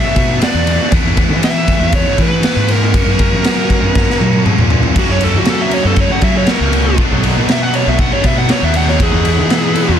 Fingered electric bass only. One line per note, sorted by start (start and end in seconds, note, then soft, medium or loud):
0.16 0.40 B2 loud
0.54 0.78 E2 medium
0.93 1.04 E2 loud
1.04 1.31 E2 medium
1.29 1.77 E3 medium
1.81 2.04 E2 medium
2.18 2.42 E3 loud
2.56 2.94 G#2 medium
2.94 3.05 F#2 medium
3.06 3.33 F#2 loud
3.32 3.80 F#3 medium
3.82 4.06 F#2 medium
4.20 4.44 F#3 medium
4.58 4.82 A#2 medium
4.96 5.08 F#2 loud
5.09 5.37 F#2 medium
5.35 5.83 F#3 medium
5.85 6.09 F#2 medium
6.22 6.46 F#3 loud
6.60 6.98 C#2 medium
6.98 7.10 B1 loud
7.12 7.38 B1 loud
7.37 7.84 B2 medium
7.87 8.11 B1 medium
8.25 8.48 B2 loud
8.62 9.00 D#2 medium
9.00 9.12 E2 loud
9.14 9.40 E2 loud
9.39 9.86 E3 medium
9.89 9.99 E2 loud